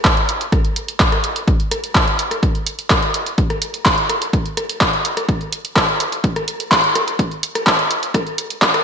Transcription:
0.05 kick loud
0.05 clap loud
0.05 closed hi-hat medium
0.17 closed hi-hat soft
0.29 closed hi-hat medium
0.41 closed hi-hat medium
0.52 kick loud
0.52 cross-stick soft
0.52 closed hi-hat medium
0.65 closed hi-hat soft
0.76 closed hi-hat loud
0.88 closed hi-hat medium
1.00 kick loud
1.00 clap loud
1.00 closed hi-hat medium
1.12 cross-stick soft
1.12 closed hi-hat soft
1.24 closed hi-hat medium
1.36 closed hi-hat medium
1.48 kick loud
1.48 closed hi-hat medium
1.60 closed hi-hat soft
1.71 cross-stick soft
1.71 closed hi-hat loud
1.84 closed hi-hat medium
1.95 kick loud
1.95 clap loud
1.95 closed hi-hat medium
2.08 closed hi-hat soft
2.19 closed hi-hat medium
2.31 cross-stick soft
2.31 closed hi-hat medium
2.43 kick loud
2.43 closed hi-hat medium
2.55 closed hi-hat soft
2.67 closed hi-hat loud
2.79 closed hi-hat medium
2.90 kick loud
2.90 cross-stick medium
2.90 clap loud
2.90 closed hi-hat medium
3.03 closed hi-hat soft
3.14 closed hi-hat medium
3.26 closed hi-hat medium
3.38 kick loud
3.38 closed hi-hat soft
3.50 cross-stick soft
3.50 closed hi-hat soft
3.62 closed hi-hat loud
3.74 closed hi-hat medium
3.86 kick loud
3.86 clap loud
3.86 closed hi-hat medium
3.98 closed hi-hat soft
4.09 cross-stick soft
4.09 closed hi-hat medium
4.22 closed hi-hat medium
4.33 kick loud
4.33 closed hi-hat medium
4.46 closed hi-hat soft
4.57 cross-stick soft
4.57 closed hi-hat loud
4.69 closed hi-hat medium
4.81 kick loud
4.81 clap loud
4.81 closed hi-hat medium
4.93 closed hi-hat soft
5.05 closed hi-hat medium
5.17 cross-stick medium
5.17 closed hi-hat medium
5.29 kick loud
5.29 closed hi-hat soft
5.41 closed hi-hat soft
5.53 closed hi-hat loud
5.65 closed hi-hat medium
5.76 kick loud
5.76 cross-stick soft
5.76 clap loud
5.76 closed hi-hat medium
5.89 closed hi-hat soft
6.00 closed hi-hat medium
6.12 closed hi-hat medium
6.24 kick loud
6.24 closed hi-hat medium
6.36 cross-stick medium
6.36 closed hi-hat soft
6.48 closed hi-hat medium
6.60 closed hi-hat medium
6.71 kick loud
6.71 clap loud
6.71 closed hi-hat medium
6.84 closed hi-hat soft
6.95 cross-stick medium
6.95 closed hi-hat medium
7.08 closed hi-hat medium
7.19 kick loud
7.19 closed hi-hat medium
7.31 closed hi-hat soft
7.43 closed hi-hat loud
7.55 cross-stick medium
7.55 closed hi-hat medium
7.67 kick loud
7.67 clap loud
7.67 closed hi-hat medium
7.79 closed hi-hat soft
7.91 closed hi-hat medium
8.03 closed hi-hat medium
8.14 kick loud
8.14 cross-stick medium
8.14 closed hi-hat medium
8.27 closed hi-hat soft
8.38 closed hi-hat medium
8.50 closed hi-hat medium
8.62 kick loud
8.62 clap loud
8.62 closed hi-hat medium
8.74 cross-stick medium
8.74 closed hi-hat soft

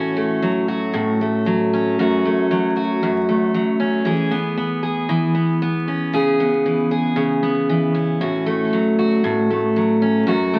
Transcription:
0.00 0.92 A2 medium
0.00 0.42 E3 medium
0.00 1.73 C#4 medium
0.00 0.68 F#4 medium
0.17 1.21 A3 medium
0.42 1.46 F#3 medium
0.68 2.00 F#4 medium
0.94 1.98 A2 medium
1.21 2.25 A3 soft
1.46 2.50 F#3 medium
1.73 3.79 C#4 medium
1.99 3.02 F#2 medium
1.99 2.75 F#4 medium
2.25 3.27 A3 medium
2.51 3.53 F#3 medium
2.77 4.06 F#4 medium
3.03 4.12 F#2 medium
3.29 4.12 A3 soft
3.54 4.05 F#3 medium
3.80 4.34 C#4 medium
4.05 5.09 E3 medium
4.05 4.82 G#4 medium
4.31 4.57 B3 medium
4.57 5.34 B3 medium
4.83 6.14 G#4 medium
5.09 6.65 E3 medium
5.35 5.62 B3 soft
5.62 6.40 B3 medium
5.88 6.43 C#4 medium
6.13 7.15 C#3 medium
6.13 6.90 G#4 medium
6.40 7.41 B3 medium
6.66 7.69 E3 soft
6.91 8.21 G#4 medium
7.16 8.26 C#3 medium
7.43 8.26 B3 soft
7.69 8.72 E3 medium
7.95 10.01 C#4 medium
8.21 9.23 A2 medium
8.21 8.98 F#4 soft
8.46 9.49 A3 medium
8.73 9.76 F#3 medium
8.99 10.27 F#4 medium
9.24 10.26 A2 medium
9.50 10.34 A3 medium
9.76 10.59 F#3 medium
10.02 10.33 C#4 medium
10.27 10.59 F#2 medium
10.27 10.59 F#4 medium
10.54 10.59 A3 medium

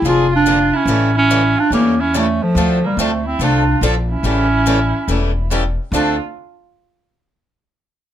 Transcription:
0.02 0.70 F1 medium
0.02 0.26 D3 medium
0.02 0.26 F3 medium
0.02 0.26 A#3 medium
0.02 0.26 D4 medium
0.02 0.26 G#4 medium
0.02 0.30 G#4 medium
0.09 0.31 F4 loud
0.33 0.78 D4 loud
0.33 0.75 F4 medium
0.46 0.57 D3 medium
0.46 0.57 F3 medium
0.46 0.57 A#3 medium
0.46 0.57 D4 medium
0.46 0.58 G#4 medium
0.74 1.16 C#4 loud
0.74 1.14 E4 medium
0.85 1.54 A1 medium
0.85 1.09 C#3 medium
0.85 1.09 E3 medium
0.85 1.10 G3 medium
0.85 1.10 A3 medium
0.85 1.09 C#4 medium
0.85 1.10 G4 medium
0.90 1.10 E4 medium
0.90 1.10 A4 medium
1.15 1.61 C#4 loud
1.15 1.57 E4 medium
1.30 1.42 C#3 medium
1.30 1.41 E3 medium
1.30 1.41 G3 medium
1.30 1.42 A3 medium
1.30 1.42 C#4 medium
1.30 1.41 E4 medium
1.30 1.42 G4 medium
1.30 1.41 A4 medium
1.56 1.73 D4 loud
1.56 1.71 F4 medium
1.70 2.38 E2 medium
1.70 1.93 C#3 medium
1.70 1.94 E3 medium
1.70 1.93 G3 medium
1.70 1.94 A3 medium
1.70 2.02 A#3 loud
1.70 2.01 C#4 medium
1.70 1.94 C#4 medium
1.70 1.94 E4 medium
1.70 1.94 G4 medium
1.70 1.94 A4 medium
2.00 2.19 C#4 medium
2.00 2.16 E4 medium
2.14 2.25 C#3 medium
2.14 2.26 E3 medium
2.14 2.25 G3 medium
2.14 2.26 A3 medium
2.14 2.44 A3 medium
2.14 2.44 C#4 medium
2.14 2.26 C#4 medium
2.14 2.26 E4 medium
2.14 2.26 G4 medium
2.14 2.26 A4 medium
2.42 2.88 F3 loud
2.42 2.85 A3 medium
2.55 2.89 D2 medium
2.55 2.78 D3 medium
2.55 2.78 F3 medium
2.55 2.78 A3 medium
2.55 2.78 C4 medium
2.55 2.78 D4 medium
2.55 2.78 F4 medium
2.55 2.78 A4 medium
2.84 3.01 G3 medium
2.84 3.01 A#3 medium
2.97 3.33 D2 medium
2.97 3.10 D3 medium
2.97 3.10 F3 medium
2.97 3.10 A3 medium
2.97 3.26 A3 medium
2.97 3.25 C4 medium
2.97 3.10 C4 medium
2.97 3.11 D4 medium
2.97 3.10 F4 loud
2.97 3.10 A4 loud
3.26 3.45 C4 medium
3.26 3.42 E4 medium
3.39 3.75 C2 medium
3.39 3.61 D3 medium
3.39 3.62 F3 medium
3.39 3.62 A3 medium
3.39 3.62 C4 medium
3.39 3.63 D4 medium
3.39 3.62 F4 medium
3.39 3.78 F4 medium
3.39 3.62 A4 medium
3.43 3.80 D4 loud
3.81 4.17 A#1 medium
3.81 3.94 D3 medium
3.81 3.94 F3 medium
3.81 3.94 A3 medium
3.81 3.94 C4 medium
3.81 3.94 D4 loud
3.81 3.94 F4 loud
3.81 3.94 A4 loud
4.10 5.48 C#4 medium
4.10 5.47 E4 medium
4.23 4.91 A1 medium
4.23 4.46 C#3 medium
4.23 4.46 E3 medium
4.23 4.46 G3 medium
4.23 4.46 A3 medium
4.23 4.46 C#4 medium
4.23 4.47 E4 medium
4.23 4.46 G4 medium
4.23 4.47 A4 medium
4.66 4.78 C#3 medium
4.66 4.78 E3 medium
4.66 4.78 G3 medium
4.66 4.78 A3 medium
4.66 4.78 C#4 loud
4.66 4.79 E4 medium
4.66 4.78 G4 medium
4.66 4.79 A4 loud
5.08 5.76 E1 medium
5.08 5.30 C#3 medium
5.08 5.30 E3 medium
5.08 5.31 G3 medium
5.08 5.30 A3 medium
5.08 5.31 C#4 medium
5.08 5.32 E4 medium
5.08 5.31 G4 medium
5.08 5.32 A4 medium
5.51 5.62 C#3 medium
5.51 5.63 E3 medium
5.51 5.62 G3 medium
5.51 5.63 A3 medium
5.51 5.63 C#4 medium
5.51 5.63 E4 medium
5.51 5.63 G4 medium
5.51 5.63 A4 medium
5.92 6.17 D2 medium
5.92 6.15 D3 medium
5.92 6.15 F3 medium
5.92 6.15 A3 medium
5.92 6.15 C4 medium
5.92 6.18 D4 medium
5.92 6.15 D4 medium
5.92 6.18 F4 medium
5.92 6.15 F4 medium
5.96 6.16 A4 medium

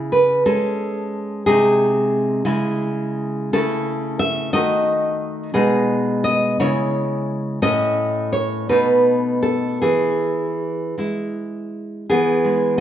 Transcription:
0.00 0.43 C#3 medium
0.00 0.10 E4 medium
0.12 0.44 B4 medium
0.46 1.42 G#3 soft
0.46 1.42 C#4 soft
0.46 1.42 A4 medium
1.46 2.43 C3 medium
1.46 2.42 G#3 soft
1.46 2.42 D#4 soft
1.46 2.42 G#4 medium
2.45 3.50 C#3 medium
2.45 3.49 G#3 soft
2.45 3.49 E4 medium
3.53 4.51 C#3 medium
3.53 4.50 A3 soft
3.53 4.50 E4 soft
3.53 4.18 A4 medium
4.19 4.52 E5 medium
4.53 5.52 D#3 medium
4.53 5.51 A3 soft
4.53 5.51 F#4 soft
4.53 5.51 D#5 medium
5.54 6.56 B2 medium
5.54 6.55 G#3 soft
5.54 6.55 D#4 soft
5.54 6.21 G#4 medium
6.24 6.58 D#5 medium
6.60 7.60 C#3 medium
6.60 7.59 G#3 soft
6.60 7.59 E4 soft
6.60 7.59 C#5 medium
7.62 8.67 A2 medium
7.62 8.66 A3 soft
7.62 8.66 C#4 soft
7.62 8.30 D#5 medium
8.33 8.68 C#5 medium
8.69 9.79 B2 medium
8.69 9.78 A3 soft
8.69 9.79 D#4 soft
8.69 9.40 B4 medium
9.43 9.80 A4 medium
9.82 10.94 E3 medium
9.82 11.69 G#4 medium
10.98 12.05 G#3 soft
10.98 12.05 E4 soft
12.10 12.80 E3 medium
12.10 12.75 B3 medium
12.10 12.76 G#4 medium
12.45 12.80 G#3 soft

